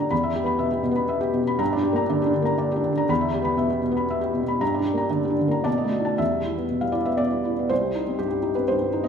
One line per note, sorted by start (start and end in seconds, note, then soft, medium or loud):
0.00 0.14 G2 medium
0.00 0.14 D3 soft
0.00 0.14 A#3 soft
0.00 0.14 D4 soft
0.00 0.14 G4 soft
0.00 0.14 D5 medium
0.00 0.14 A#5 medium
0.11 1.56 E2 medium
0.11 0.31 B5 medium
0.23 0.43 E5 soft
0.36 0.55 G4 medium
0.44 0.70 B3 soft
0.44 0.67 B5 medium
0.59 0.81 B2 soft
0.59 0.79 E5 medium
0.71 0.92 G4 soft
0.83 1.04 B2 medium
0.91 1.19 B3 medium
0.96 1.17 B5 soft
1.09 1.29 E5 medium
1.21 1.42 G4 medium
1.33 1.42 B2 soft
1.43 1.60 B2 soft
1.47 1.60 B5 medium
1.59 3.05 G2 medium
1.59 1.79 A#5 medium
1.73 2.03 D4 soft
1.73 1.93 D5 soft
1.83 2.04 G4 medium
1.93 2.20 A#3 soft
1.93 2.17 A#5 medium
2.10 2.33 D3 medium
2.10 2.30 D5 medium
2.22 2.53 D4 medium
2.22 2.42 G4 medium
2.34 2.54 D3 medium
2.42 2.69 A#3 medium
2.42 2.66 A#5 medium
2.58 2.79 D5 medium
2.72 2.92 G4 medium
2.76 3.03 D4 medium
2.84 2.91 D3 soft
2.93 3.10 D3 soft
2.97 3.10 A#5 soft
3.09 4.57 E2 medium
3.09 3.30 B5 medium
3.21 3.42 E5 soft
3.34 3.54 G4 medium
3.42 3.70 B3 soft
3.42 3.66 B5 medium
3.57 3.80 B2 soft
3.57 3.79 E5 medium
3.70 3.92 G4 soft
3.82 4.04 B2 soft
3.91 4.20 B3 medium
3.97 4.18 B5 soft
4.10 4.31 E5 medium
4.21 4.43 G4 soft
4.33 4.42 B2 soft
4.43 4.61 B2 soft
4.48 4.61 B5 soft
4.61 5.63 G2 medium
4.61 4.82 A#5 medium
4.74 4.95 D5 soft
4.79 5.06 D4 soft
4.86 5.07 G4 soft
4.93 5.22 A#3 soft
4.98 5.20 A#5 soft
5.10 5.37 D3 soft
5.10 5.33 D5 soft
5.25 5.47 G4 soft
5.30 5.59 D4 soft
5.39 5.61 D3 soft
5.48 5.66 A#3 soft
5.48 5.66 A#5 soft
5.64 6.18 B2 medium
5.64 6.19 D5 medium
5.64 5.87 A5 soft
5.78 6.01 D#5 soft
5.84 6.13 A3 soft
5.91 6.14 F#4 soft
6.00 6.17 D#4 soft
6.05 6.19 A5 soft
6.18 7.66 E2 soft
6.18 6.82 E5 medium
6.32 6.53 G3 soft
6.44 6.65 E4 soft
6.58 6.78 B3 soft
6.70 6.91 B2 soft
6.81 7.02 G3 soft
6.81 6.95 F5 medium
6.92 7.14 E4 soft
6.92 7.06 D5 medium
7.05 7.27 B3 soft
7.05 7.19 E5 medium
7.17 7.39 B2 soft
7.17 7.69 D5 medium
7.32 7.53 G3 soft
7.45 7.65 E4 soft
7.59 7.71 B3 soft
7.69 9.08 C2 soft
7.69 8.18 C5 medium
7.81 8.01 G3 soft
7.95 8.14 D#4 soft
8.07 8.26 C4 soft
8.19 8.39 G2 soft
8.19 8.56 G4 medium
8.31 8.51 G3 soft
8.43 8.63 D#4 soft
8.55 8.76 C4 soft
8.55 8.68 B4 medium
8.68 8.89 G2 soft
8.68 9.05 C5 medium
8.81 9.01 G3 soft
8.93 9.08 D#4 soft
9.04 9.08 C4 soft
9.04 9.08 D#5 medium